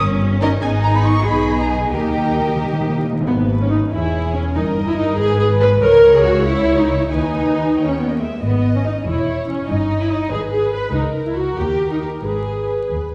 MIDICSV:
0, 0, Header, 1, 9, 480
1, 0, Start_track
1, 0, Key_signature, 5, "minor"
1, 0, Tempo, 426136
1, 705, Time_signature, 6, 3, 24, 8
1, 1676, Tempo, 448766
1, 3596, Tempo, 422833
1, 7436, Tempo, 437637
1, 9836, Tempo, 417246
1, 12716, Tempo, 443787
1, 14652, End_track
2, 0, Start_track
2, 0, Title_t, "Flute"
2, 0, Program_c, 0, 73
2, 700, Note_on_c, 0, 80, 86
2, 768, Note_off_c, 0, 80, 0
2, 937, Note_on_c, 0, 82, 90
2, 1076, Note_on_c, 0, 83, 78
2, 1093, Note_off_c, 0, 82, 0
2, 1185, Note_on_c, 0, 85, 84
2, 1202, Note_off_c, 0, 83, 0
2, 1420, Note_off_c, 0, 85, 0
2, 1427, Note_on_c, 0, 83, 84
2, 1801, Note_on_c, 0, 82, 68
2, 1817, Note_off_c, 0, 83, 0
2, 1909, Note_on_c, 0, 80, 67
2, 1925, Note_off_c, 0, 82, 0
2, 2141, Note_off_c, 0, 80, 0
2, 2147, Note_on_c, 0, 79, 62
2, 3332, Note_off_c, 0, 79, 0
2, 14652, End_track
3, 0, Start_track
3, 0, Title_t, "Violin section"
3, 0, Program_c, 1, 48
3, 696, Note_on_c, 1, 80, 85
3, 786, Note_off_c, 1, 80, 0
3, 948, Note_on_c, 1, 82, 78
3, 996, Note_off_c, 1, 82, 0
3, 1070, Note_on_c, 1, 83, 70
3, 1185, Note_on_c, 1, 85, 77
3, 1186, Note_off_c, 1, 83, 0
3, 1429, Note_off_c, 1, 85, 0
3, 1436, Note_on_c, 1, 83, 67
3, 1797, Note_off_c, 1, 83, 0
3, 1813, Note_on_c, 1, 82, 56
3, 1856, Note_off_c, 1, 82, 0
3, 1923, Note_on_c, 1, 80, 56
3, 2009, Note_off_c, 1, 80, 0
3, 2156, Note_on_c, 1, 79, 65
3, 3337, Note_off_c, 1, 79, 0
3, 3597, Note_on_c, 1, 71, 54
3, 4282, Note_off_c, 1, 71, 0
3, 4332, Note_on_c, 1, 73, 53
3, 5054, Note_off_c, 1, 73, 0
3, 5057, Note_on_c, 1, 75, 52
3, 5766, Note_off_c, 1, 75, 0
3, 5766, Note_on_c, 1, 71, 58
3, 6480, Note_off_c, 1, 71, 0
3, 6485, Note_on_c, 1, 73, 74
3, 7888, Note_off_c, 1, 73, 0
3, 7920, Note_on_c, 1, 80, 54
3, 8639, Note_off_c, 1, 80, 0
3, 8654, Note_on_c, 1, 79, 41
3, 9142, Note_off_c, 1, 79, 0
3, 9844, Note_on_c, 1, 75, 52
3, 10020, Note_off_c, 1, 75, 0
3, 10567, Note_on_c, 1, 73, 51
3, 10739, Note_off_c, 1, 73, 0
3, 11275, Note_on_c, 1, 73, 55
3, 11450, Note_off_c, 1, 73, 0
3, 11987, Note_on_c, 1, 71, 58
3, 12164, Note_off_c, 1, 71, 0
3, 12724, Note_on_c, 1, 70, 52
3, 12894, Note_off_c, 1, 70, 0
3, 13430, Note_on_c, 1, 70, 46
3, 13605, Note_off_c, 1, 70, 0
3, 14154, Note_on_c, 1, 71, 39
3, 14332, Note_off_c, 1, 71, 0
3, 14392, Note_on_c, 1, 71, 39
3, 14652, Note_off_c, 1, 71, 0
3, 14652, End_track
4, 0, Start_track
4, 0, Title_t, "Violin section"
4, 0, Program_c, 2, 48
4, 467, Note_on_c, 2, 70, 76
4, 470, Note_on_c, 2, 75, 73
4, 578, Note_off_c, 2, 70, 0
4, 579, Note_off_c, 2, 75, 0
4, 709, Note_on_c, 2, 75, 61
4, 711, Note_on_c, 2, 68, 60
4, 1386, Note_off_c, 2, 75, 0
4, 1387, Note_off_c, 2, 68, 0
4, 1434, Note_on_c, 2, 75, 59
4, 1437, Note_on_c, 2, 68, 60
4, 2139, Note_off_c, 2, 75, 0
4, 2140, Note_off_c, 2, 68, 0
4, 2161, Note_on_c, 2, 70, 54
4, 2165, Note_on_c, 2, 75, 51
4, 3356, Note_off_c, 2, 75, 0
4, 3378, Note_off_c, 2, 70, 0
4, 4331, Note_on_c, 2, 68, 59
4, 5008, Note_off_c, 2, 68, 0
4, 5046, Note_on_c, 2, 70, 62
4, 5747, Note_off_c, 2, 70, 0
4, 5763, Note_on_c, 2, 71, 73
4, 6478, Note_off_c, 2, 71, 0
4, 6485, Note_on_c, 2, 73, 75
4, 7888, Note_off_c, 2, 73, 0
4, 7926, Note_on_c, 2, 71, 52
4, 8581, Note_off_c, 2, 71, 0
4, 8648, Note_on_c, 2, 73, 55
4, 8977, Note_off_c, 2, 73, 0
4, 9011, Note_on_c, 2, 75, 36
4, 9120, Note_on_c, 2, 76, 42
4, 9126, Note_off_c, 2, 75, 0
4, 9359, Note_off_c, 2, 76, 0
4, 9360, Note_on_c, 2, 75, 50
4, 10030, Note_off_c, 2, 75, 0
4, 10083, Note_on_c, 2, 73, 55
4, 10798, Note_off_c, 2, 73, 0
4, 10804, Note_on_c, 2, 75, 55
4, 11499, Note_off_c, 2, 75, 0
4, 11510, Note_on_c, 2, 71, 58
4, 12225, Note_off_c, 2, 71, 0
4, 12231, Note_on_c, 2, 70, 53
4, 12938, Note_off_c, 2, 70, 0
4, 12954, Note_on_c, 2, 70, 56
4, 13652, Note_off_c, 2, 70, 0
4, 13666, Note_on_c, 2, 71, 43
4, 14652, Note_off_c, 2, 71, 0
4, 14652, End_track
5, 0, Start_track
5, 0, Title_t, "French horn section"
5, 0, Program_c, 3, 60
5, 3607, Note_on_c, 3, 59, 61
5, 3769, Note_off_c, 3, 59, 0
5, 3960, Note_on_c, 3, 61, 55
5, 4015, Note_off_c, 3, 61, 0
5, 4084, Note_on_c, 3, 63, 65
5, 4322, Note_off_c, 3, 63, 0
5, 4331, Note_on_c, 3, 64, 68
5, 4805, Note_off_c, 3, 64, 0
5, 4815, Note_on_c, 3, 61, 61
5, 5052, Note_off_c, 3, 61, 0
5, 5058, Note_on_c, 3, 63, 73
5, 5410, Note_off_c, 3, 63, 0
5, 5415, Note_on_c, 3, 64, 65
5, 5527, Note_off_c, 3, 64, 0
5, 5533, Note_on_c, 3, 63, 67
5, 5759, Note_on_c, 3, 68, 81
5, 5767, Note_off_c, 3, 63, 0
5, 5867, Note_off_c, 3, 68, 0
5, 5996, Note_on_c, 3, 68, 71
5, 6104, Note_off_c, 3, 68, 0
5, 6238, Note_on_c, 3, 71, 89
5, 6474, Note_off_c, 3, 71, 0
5, 6487, Note_on_c, 3, 70, 94
5, 6839, Note_on_c, 3, 68, 69
5, 6842, Note_off_c, 3, 70, 0
5, 6957, Note_off_c, 3, 68, 0
5, 6957, Note_on_c, 3, 66, 79
5, 7189, Note_off_c, 3, 66, 0
5, 7207, Note_on_c, 3, 64, 73
5, 7560, Note_off_c, 3, 64, 0
5, 7561, Note_on_c, 3, 63, 61
5, 7613, Note_off_c, 3, 63, 0
5, 7698, Note_on_c, 3, 64, 74
5, 7921, Note_off_c, 3, 64, 0
5, 7932, Note_on_c, 3, 63, 63
5, 8764, Note_off_c, 3, 63, 0
5, 8771, Note_on_c, 3, 61, 46
5, 8821, Note_off_c, 3, 61, 0
5, 8884, Note_on_c, 3, 59, 45
5, 8936, Note_off_c, 3, 59, 0
5, 9005, Note_on_c, 3, 58, 43
5, 9058, Note_off_c, 3, 58, 0
5, 9133, Note_on_c, 3, 56, 42
5, 9246, Note_off_c, 3, 56, 0
5, 9255, Note_on_c, 3, 58, 41
5, 9370, Note_off_c, 3, 58, 0
5, 9381, Note_on_c, 3, 59, 54
5, 9728, Note_off_c, 3, 59, 0
5, 9736, Note_on_c, 3, 61, 49
5, 9784, Note_off_c, 3, 61, 0
5, 9852, Note_on_c, 3, 63, 56
5, 10081, Note_off_c, 3, 63, 0
5, 10089, Note_on_c, 3, 64, 59
5, 10562, Note_off_c, 3, 64, 0
5, 10566, Note_on_c, 3, 61, 57
5, 10671, Note_off_c, 3, 61, 0
5, 10803, Note_on_c, 3, 63, 61
5, 11149, Note_off_c, 3, 63, 0
5, 11164, Note_on_c, 3, 64, 53
5, 11277, Note_off_c, 3, 64, 0
5, 11282, Note_on_c, 3, 63, 60
5, 11515, Note_off_c, 3, 63, 0
5, 11518, Note_on_c, 3, 68, 72
5, 11623, Note_off_c, 3, 68, 0
5, 11762, Note_on_c, 3, 68, 64
5, 11866, Note_off_c, 3, 68, 0
5, 11998, Note_on_c, 3, 71, 65
5, 12103, Note_off_c, 3, 71, 0
5, 12235, Note_on_c, 3, 63, 76
5, 12588, Note_off_c, 3, 63, 0
5, 12611, Note_on_c, 3, 64, 44
5, 12724, Note_off_c, 3, 64, 0
5, 12729, Note_on_c, 3, 66, 57
5, 12954, Note_on_c, 3, 67, 57
5, 12957, Note_off_c, 3, 66, 0
5, 13307, Note_off_c, 3, 67, 0
5, 13311, Note_on_c, 3, 63, 49
5, 13424, Note_off_c, 3, 63, 0
5, 13426, Note_on_c, 3, 67, 50
5, 13660, Note_off_c, 3, 67, 0
5, 13671, Note_on_c, 3, 68, 50
5, 14381, Note_off_c, 3, 68, 0
5, 14652, End_track
6, 0, Start_track
6, 0, Title_t, "Viola section"
6, 0, Program_c, 4, 48
6, 468, Note_on_c, 4, 63, 60
6, 471, Note_on_c, 4, 61, 63
6, 578, Note_off_c, 4, 63, 0
6, 580, Note_off_c, 4, 61, 0
6, 700, Note_on_c, 4, 63, 67
6, 703, Note_on_c, 4, 59, 68
6, 1382, Note_off_c, 4, 63, 0
6, 1383, Note_off_c, 4, 59, 0
6, 1425, Note_on_c, 4, 59, 60
6, 1425, Note_on_c, 4, 63, 59
6, 2134, Note_off_c, 4, 59, 0
6, 2135, Note_off_c, 4, 63, 0
6, 2150, Note_on_c, 4, 58, 62
6, 2152, Note_on_c, 4, 63, 54
6, 3349, Note_off_c, 4, 63, 0
6, 3373, Note_off_c, 4, 58, 0
6, 3590, Note_on_c, 4, 59, 77
6, 3681, Note_off_c, 4, 59, 0
6, 3971, Note_on_c, 4, 61, 68
6, 4081, Note_on_c, 4, 63, 65
6, 4086, Note_off_c, 4, 61, 0
6, 4171, Note_off_c, 4, 63, 0
6, 4330, Note_on_c, 4, 64, 73
6, 4804, Note_off_c, 4, 64, 0
6, 4813, Note_on_c, 4, 61, 66
6, 4904, Note_off_c, 4, 61, 0
6, 5042, Note_on_c, 4, 63, 76
6, 5133, Note_off_c, 4, 63, 0
6, 5404, Note_on_c, 4, 64, 76
6, 5515, Note_on_c, 4, 63, 78
6, 5522, Note_off_c, 4, 64, 0
6, 5752, Note_on_c, 4, 68, 93
6, 5753, Note_off_c, 4, 63, 0
6, 5983, Note_off_c, 4, 68, 0
6, 5997, Note_on_c, 4, 68, 85
6, 6087, Note_off_c, 4, 68, 0
6, 6240, Note_on_c, 4, 71, 87
6, 6331, Note_off_c, 4, 71, 0
6, 6474, Note_on_c, 4, 70, 99
6, 6828, Note_off_c, 4, 70, 0
6, 6841, Note_on_c, 4, 68, 96
6, 6948, Note_on_c, 4, 66, 81
6, 6958, Note_off_c, 4, 68, 0
6, 7185, Note_off_c, 4, 66, 0
6, 7189, Note_on_c, 4, 64, 92
6, 7545, Note_off_c, 4, 64, 0
6, 7568, Note_on_c, 4, 63, 76
6, 7680, Note_off_c, 4, 63, 0
6, 7680, Note_on_c, 4, 64, 70
6, 7916, Note_off_c, 4, 64, 0
6, 7921, Note_on_c, 4, 63, 80
6, 8742, Note_off_c, 4, 63, 0
6, 8767, Note_on_c, 4, 61, 51
6, 8874, Note_on_c, 4, 59, 51
6, 8881, Note_off_c, 4, 61, 0
6, 8993, Note_off_c, 4, 59, 0
6, 9008, Note_on_c, 4, 58, 49
6, 9124, Note_off_c, 4, 58, 0
6, 9126, Note_on_c, 4, 56, 45
6, 9245, Note_off_c, 4, 56, 0
6, 9253, Note_on_c, 4, 58, 43
6, 9367, Note_on_c, 4, 59, 67
6, 9369, Note_off_c, 4, 58, 0
6, 9714, Note_off_c, 4, 59, 0
6, 9723, Note_on_c, 4, 61, 60
6, 9768, Note_off_c, 4, 61, 0
6, 9833, Note_on_c, 4, 63, 63
6, 9925, Note_off_c, 4, 63, 0
6, 10074, Note_on_c, 4, 64, 64
6, 10545, Note_off_c, 4, 64, 0
6, 10565, Note_on_c, 4, 61, 58
6, 10792, Note_on_c, 4, 63, 67
6, 10795, Note_off_c, 4, 61, 0
6, 11151, Note_off_c, 4, 63, 0
6, 11164, Note_on_c, 4, 64, 73
6, 11272, Note_on_c, 4, 63, 67
6, 11277, Note_off_c, 4, 64, 0
6, 11510, Note_off_c, 4, 63, 0
6, 11515, Note_on_c, 4, 68, 80
6, 11607, Note_off_c, 4, 68, 0
6, 11749, Note_on_c, 4, 68, 70
6, 11982, Note_off_c, 4, 68, 0
6, 11997, Note_on_c, 4, 71, 68
6, 12226, Note_off_c, 4, 71, 0
6, 12226, Note_on_c, 4, 63, 75
6, 12318, Note_off_c, 4, 63, 0
6, 12605, Note_on_c, 4, 64, 59
6, 12712, Note_on_c, 4, 66, 66
6, 12719, Note_off_c, 4, 64, 0
6, 12948, Note_off_c, 4, 66, 0
6, 12958, Note_on_c, 4, 67, 67
6, 13308, Note_off_c, 4, 67, 0
6, 13322, Note_on_c, 4, 63, 56
6, 13425, Note_on_c, 4, 67, 49
6, 13430, Note_off_c, 4, 63, 0
6, 13512, Note_off_c, 4, 67, 0
6, 13664, Note_on_c, 4, 68, 53
6, 14377, Note_off_c, 4, 68, 0
6, 14652, End_track
7, 0, Start_track
7, 0, Title_t, "Timpani"
7, 0, Program_c, 5, 47
7, 2154, Note_on_c, 5, 51, 36
7, 2231, Note_off_c, 5, 51, 0
7, 2244, Note_on_c, 5, 51, 39
7, 2316, Note_off_c, 5, 51, 0
7, 2329, Note_on_c, 5, 51, 36
7, 2398, Note_off_c, 5, 51, 0
7, 2410, Note_on_c, 5, 51, 33
7, 2479, Note_off_c, 5, 51, 0
7, 2492, Note_on_c, 5, 51, 38
7, 2561, Note_off_c, 5, 51, 0
7, 2574, Note_on_c, 5, 51, 40
7, 2643, Note_off_c, 5, 51, 0
7, 2656, Note_on_c, 5, 51, 47
7, 2729, Note_off_c, 5, 51, 0
7, 2742, Note_on_c, 5, 51, 48
7, 2811, Note_off_c, 5, 51, 0
7, 2824, Note_on_c, 5, 51, 54
7, 2898, Note_off_c, 5, 51, 0
7, 2911, Note_on_c, 5, 51, 57
7, 2990, Note_off_c, 5, 51, 0
7, 3003, Note_on_c, 5, 51, 69
7, 3072, Note_off_c, 5, 51, 0
7, 3085, Note_on_c, 5, 51, 72
7, 3160, Note_off_c, 5, 51, 0
7, 3172, Note_on_c, 5, 51, 64
7, 3252, Note_off_c, 5, 51, 0
7, 3263, Note_on_c, 5, 51, 75
7, 3334, Note_off_c, 5, 51, 0
7, 3347, Note_on_c, 5, 51, 74
7, 3412, Note_off_c, 5, 51, 0
7, 3425, Note_on_c, 5, 51, 89
7, 3504, Note_off_c, 5, 51, 0
7, 3515, Note_on_c, 5, 51, 98
7, 3590, Note_off_c, 5, 51, 0
7, 14652, End_track
8, 0, Start_track
8, 0, Title_t, "Cello section"
8, 0, Program_c, 6, 48
8, 0, Note_on_c, 6, 61, 79
8, 677, Note_off_c, 6, 61, 0
8, 711, Note_on_c, 6, 63, 75
8, 1418, Note_off_c, 6, 63, 0
8, 1428, Note_on_c, 6, 68, 66
8, 2150, Note_off_c, 6, 68, 0
8, 2150, Note_on_c, 6, 67, 55
8, 3215, Note_off_c, 6, 67, 0
8, 3595, Note_on_c, 6, 44, 58
8, 4281, Note_off_c, 6, 44, 0
8, 4327, Note_on_c, 6, 40, 54
8, 5037, Note_off_c, 6, 40, 0
8, 5054, Note_on_c, 6, 43, 59
8, 5765, Note_off_c, 6, 43, 0
8, 5767, Note_on_c, 6, 44, 66
8, 6466, Note_off_c, 6, 44, 0
8, 6480, Note_on_c, 6, 37, 67
8, 7911, Note_on_c, 6, 39, 54
8, 7914, Note_off_c, 6, 37, 0
8, 8620, Note_off_c, 6, 39, 0
8, 8635, Note_on_c, 6, 39, 45
8, 9123, Note_off_c, 6, 39, 0
8, 9373, Note_on_c, 6, 44, 61
8, 9930, Note_off_c, 6, 44, 0
8, 10080, Note_on_c, 6, 40, 56
8, 10647, Note_off_c, 6, 40, 0
8, 10802, Note_on_c, 6, 43, 60
8, 11363, Note_off_c, 6, 43, 0
8, 11508, Note_on_c, 6, 44, 62
8, 12074, Note_off_c, 6, 44, 0
8, 12229, Note_on_c, 6, 37, 59
8, 12804, Note_off_c, 6, 37, 0
8, 12959, Note_on_c, 6, 39, 54
8, 13518, Note_off_c, 6, 39, 0
8, 13671, Note_on_c, 6, 44, 49
8, 14244, Note_off_c, 6, 44, 0
8, 14389, Note_on_c, 6, 39, 39
8, 14652, Note_off_c, 6, 39, 0
8, 14652, End_track
9, 0, Start_track
9, 0, Title_t, "Double bass section"
9, 0, Program_c, 7, 48
9, 0, Note_on_c, 7, 31, 86
9, 584, Note_off_c, 7, 31, 0
9, 696, Note_on_c, 7, 32, 66
9, 1380, Note_off_c, 7, 32, 0
9, 1421, Note_on_c, 7, 35, 72
9, 2146, Note_off_c, 7, 35, 0
9, 2146, Note_on_c, 7, 39, 60
9, 3371, Note_off_c, 7, 39, 0
9, 3596, Note_on_c, 7, 32, 57
9, 4281, Note_off_c, 7, 32, 0
9, 4328, Note_on_c, 7, 28, 61
9, 5037, Note_off_c, 7, 28, 0
9, 5053, Note_on_c, 7, 31, 64
9, 5758, Note_on_c, 7, 32, 73
9, 5765, Note_off_c, 7, 31, 0
9, 6461, Note_off_c, 7, 32, 0
9, 6476, Note_on_c, 7, 37, 79
9, 7912, Note_off_c, 7, 37, 0
9, 7921, Note_on_c, 7, 39, 53
9, 8625, Note_off_c, 7, 39, 0
9, 8649, Note_on_c, 7, 39, 52
9, 9130, Note_off_c, 7, 39, 0
9, 9367, Note_on_c, 7, 32, 58
9, 9926, Note_off_c, 7, 32, 0
9, 10086, Note_on_c, 7, 28, 64
9, 10650, Note_off_c, 7, 28, 0
9, 10793, Note_on_c, 7, 31, 64
9, 11359, Note_off_c, 7, 31, 0
9, 11507, Note_on_c, 7, 32, 70
9, 12073, Note_off_c, 7, 32, 0
9, 12224, Note_on_c, 7, 37, 66
9, 12802, Note_off_c, 7, 37, 0
9, 12950, Note_on_c, 7, 39, 64
9, 13513, Note_off_c, 7, 39, 0
9, 13658, Note_on_c, 7, 32, 51
9, 14237, Note_off_c, 7, 32, 0
9, 14386, Note_on_c, 7, 39, 50
9, 14652, Note_off_c, 7, 39, 0
9, 14652, End_track
0, 0, End_of_file